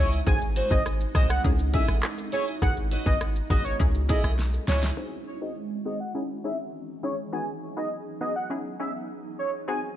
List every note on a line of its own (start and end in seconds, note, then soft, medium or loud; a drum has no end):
0.00 0.21 C#2 medium
0.00 4.94 G#3 medium
0.00 4.94 D#4 medium
0.00 0.18 E4 medium
0.00 0.19 G#4 medium
0.00 0.19 D#5 medium
0.12 shaker medium
0.26 0.62 G#1 loud
0.26 0.67 C4 loud
0.26 0.67 D#4 medium
0.26 0.67 F#4 medium
0.26 0.68 G#4 loud
0.26 0.39 G#5 loud
0.26 kick loud
0.26 high bongo medium
0.26 shaker medium
0.41 shaker medium
0.56 0.77 F#4 medium
0.56 0.78 C5 loud
0.56 0.78 D#5 loud
0.56 closed hi-hat medium
0.56 shaker medium
0.71 1.06 G#1 loud
0.71 0.83 C4 medium
0.71 0.83 D#4 medium
0.71 0.83 F#4 medium
0.71 0.83 G#4 medium
0.71 0.83 D#5 medium
0.71 kick loud
0.71 shaker medium
0.86 cross-stick medium
0.86 shaker medium
1.00 shaker medium
1.15 1.38 C2 medium
1.15 1.27 C4 medium
1.15 1.27 D#4 medium
1.15 1.36 F#4 medium
1.15 1.27 F#4 medium
1.15 1.27 G#4 medium
1.15 1.29 C5 medium
1.15 1.27 D#5 medium
1.15 1.28 D#5 medium
1.15 kick loud
1.15 cross-stick medium
1.15 closed hi-hat medium
1.15 low bongo medium
1.15 shaker medium
1.29 1.42 F#5 medium
1.29 muted steel-string acoustic guitar stroke soft
1.29 cross-stick loud
1.29 shaker medium
1.44 1.79 C#2 loud
1.44 1.71 C#4 loud
1.44 1.72 D#4 medium
1.44 1.72 E4 medium
1.44 1.72 G#4 loud
1.44 kick loud
1.44 high bongo medium
1.44 shaker medium
1.59 shaker medium
1.74 1.86 C#4 medium
1.74 1.86 D#4 medium
1.74 1.95 E4 medium
1.74 1.86 E4 medium
1.74 1.86 G#4 medium
1.74 1.95 G#4 medium
1.74 1.96 D#5 medium
1.74 1.86 E5 medium
1.74 kick loud
1.74 closed hi-hat medium
1.74 high bongo medium
1.74 shaker medium
1.88 2.00 A1 medium
1.88 cross-stick medium
1.88 high bongo medium
1.88 shaker medium
2.03 cross-stick loud
2.03 clap loud
2.03 shaker medium
2.18 high bongo medium
2.18 shaker medium
2.32 2.54 E4 medium
2.32 2.54 G#4 loud
2.32 2.44 C#5 medium
2.32 2.54 D#5 medium
2.32 closed hi-hat medium
2.32 low bongo medium
2.32 shaker medium
2.48 shaker medium
2.62 2.97 G#1 loud
2.62 3.03 B3 medium
2.62 3.03 D#4 medium
2.62 3.03 F#4 medium
2.62 3.03 G#4 loud
2.62 2.74 F#5 loud
2.62 kick loud
2.62 high bongo medium
2.62 shaker medium
2.77 shaker medium
2.91 3.12 F#4 loud
2.91 3.13 B4 medium
2.91 3.13 D#5 loud
2.91 closed hi-hat medium
2.91 shaker medium
3.06 3.41 G#1 medium
3.06 3.18 B3 medium
3.06 3.18 D#4 medium
3.06 3.18 F#4 medium
3.06 3.18 G#4 medium
3.06 3.18 D#5 medium
3.06 kick loud
3.06 shaker medium
3.21 cross-stick medium
3.21 shaker medium
3.36 shaker medium
3.50 3.73 G#1 loud
3.50 3.62 B3 medium
3.50 3.62 D#4 medium
3.50 3.71 F#4 medium
3.50 3.63 F#4 medium
3.50 3.63 G#4 medium
3.50 3.65 B4 medium
3.50 3.62 D#5 medium
3.50 3.64 D#5 loud
3.50 kick loud
3.50 closed hi-hat medium
3.50 low bongo medium
3.50 shaker medium
3.65 3.77 C#5 medium
3.65 muted steel-string acoustic guitar stroke soft
3.65 shaker medium
3.79 4.15 C#2 loud
3.79 4.07 C#4 loud
3.79 4.07 D#4 medium
3.79 4.07 E4 medium
3.79 4.07 G#4 loud
3.79 kick medium
3.79 high bongo medium
3.79 shaker medium
3.94 shaker medium
4.09 4.21 C#4 medium
4.09 4.21 D#4 medium
4.09 4.30 E4 medium
4.09 4.21 E4 medium
4.09 4.21 G#4 medium
4.09 4.31 G#4 loud
4.09 4.21 D#5 medium
4.09 4.31 D#5 loud
4.09 kick loud
4.09 closed hi-hat medium
4.09 high bongo medium
4.09 shaker medium
4.24 4.59 B1 medium
4.24 cross-stick medium
4.24 high bongo medium
4.24 shaker medium
4.39 snare medium
4.39 shaker medium
4.53 high bongo medium
4.53 shaker medium
4.68 4.91 C#2 medium
4.68 4.89 E4 medium
4.68 4.89 G#4 loud
4.68 4.80 C#5 medium
4.68 4.90 D#5 medium
4.68 snare loud
4.68 closed hi-hat medium
4.68 low bongo medium
4.68 shaker medium
4.83 snare loud
4.83 shaker medium
4.97 5.38 C4 medium
4.97 5.38 D#4 medium
4.97 5.38 F#4 medium
4.97 5.38 G#4 loud
4.97 5.09 G#5 medium
5.41 5.54 C4 medium
5.41 5.54 D#4 medium
5.41 5.54 F#4 medium
5.41 5.54 G#4 medium
5.41 5.53 D#5 medium
5.85 5.98 C4 medium
5.85 5.98 D#4 medium
5.85 5.98 F#4 medium
5.85 5.98 G#4 medium
5.85 5.98 D#5 medium
6.00 6.12 F#5 medium
6.15 6.42 C#4 medium
6.15 6.42 D#4 medium
6.15 9.97 D#4 medium
6.15 6.42 E4 medium
6.15 6.42 G#4 medium
6.44 6.57 C#4 medium
6.44 6.57 D#4 medium
6.44 6.57 E4 medium
6.44 6.57 G#4 medium
6.44 6.56 E5 medium
7.03 7.15 C#4 medium
7.03 7.15 D#4 medium
7.03 7.16 E4 medium
7.03 7.16 G#4 medium
7.03 7.15 C#5 medium
7.32 7.73 B3 medium
7.32 7.73 D#4 medium
7.32 7.73 F#4 medium
7.32 7.74 G#4 loud
7.32 7.45 G#5 medium
7.77 7.89 B3 medium
7.77 7.89 D#4 medium
7.77 7.89 F#4 medium
7.77 7.89 G#4 medium
7.77 7.89 D#5 medium
8.21 8.33 B3 medium
8.21 8.33 D#4 medium
8.21 8.33 F#4 medium
8.21 8.33 G#4 medium
8.21 8.33 D#5 medium
8.36 8.48 F#5 medium
8.50 8.77 C#4 medium
8.50 8.77 D#4 medium
8.50 8.78 E4 medium
8.50 9.97 G#4 medium
8.50 8.78 G#4 loud
8.80 8.92 C#4 medium
8.80 8.92 D#4 medium
8.80 8.92 E4 medium
8.80 8.92 G#4 medium
8.80 8.92 E5 medium
9.39 9.51 C#5 medium
9.68 9.97 C4 medium
9.68 9.97 D#4 medium
9.68 9.97 F#4 medium
9.68 9.97 G#4 loud
9.68 9.80 G#5 medium